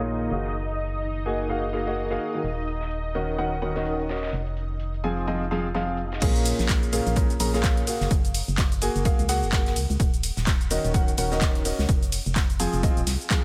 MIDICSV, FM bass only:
0, 0, Header, 1, 2, 480
1, 0, Start_track
1, 0, Key_signature, -5, "minor"
1, 0, Tempo, 472441
1, 559, Time_signature, 4, 2, 24, 8
1, 13659, End_track
2, 0, Start_track
2, 0, Title_t, "FM bass"
2, 0, Program_c, 0, 39
2, 0, Note_on_c, 0, 34, 84
2, 299, Note_off_c, 0, 34, 0
2, 320, Note_on_c, 0, 30, 91
2, 2219, Note_off_c, 0, 30, 0
2, 2478, Note_on_c, 0, 27, 87
2, 4378, Note_off_c, 0, 27, 0
2, 4399, Note_on_c, 0, 29, 92
2, 6299, Note_off_c, 0, 29, 0
2, 6318, Note_on_c, 0, 34, 98
2, 6636, Note_off_c, 0, 34, 0
2, 6699, Note_on_c, 0, 34, 105
2, 7116, Note_off_c, 0, 34, 0
2, 7179, Note_on_c, 0, 34, 99
2, 7474, Note_off_c, 0, 34, 0
2, 7518, Note_on_c, 0, 34, 80
2, 7954, Note_off_c, 0, 34, 0
2, 8139, Note_on_c, 0, 30, 96
2, 8211, Note_off_c, 0, 30, 0
2, 8238, Note_on_c, 0, 30, 101
2, 8556, Note_off_c, 0, 30, 0
2, 8618, Note_on_c, 0, 30, 110
2, 9036, Note_off_c, 0, 30, 0
2, 9099, Note_on_c, 0, 30, 102
2, 9260, Note_off_c, 0, 30, 0
2, 9339, Note_on_c, 0, 37, 96
2, 9579, Note_on_c, 0, 30, 86
2, 9594, Note_off_c, 0, 37, 0
2, 9918, Note_on_c, 0, 37, 105
2, 9933, Note_off_c, 0, 30, 0
2, 10019, Note_off_c, 0, 37, 0
2, 10058, Note_on_c, 0, 37, 87
2, 10130, Note_off_c, 0, 37, 0
2, 10158, Note_on_c, 0, 27, 99
2, 10476, Note_off_c, 0, 27, 0
2, 10538, Note_on_c, 0, 27, 106
2, 10956, Note_off_c, 0, 27, 0
2, 11019, Note_on_c, 0, 27, 98
2, 11314, Note_off_c, 0, 27, 0
2, 11359, Note_on_c, 0, 27, 81
2, 11916, Note_off_c, 0, 27, 0
2, 11978, Note_on_c, 0, 37, 94
2, 12050, Note_off_c, 0, 37, 0
2, 12077, Note_on_c, 0, 29, 101
2, 12396, Note_off_c, 0, 29, 0
2, 12459, Note_on_c, 0, 29, 112
2, 12876, Note_off_c, 0, 29, 0
2, 12938, Note_on_c, 0, 29, 102
2, 13100, Note_off_c, 0, 29, 0
2, 13179, Note_on_c, 0, 27, 95
2, 13250, Note_off_c, 0, 27, 0
2, 13278, Note_on_c, 0, 36, 95
2, 13379, Note_off_c, 0, 36, 0
2, 13659, End_track
0, 0, End_of_file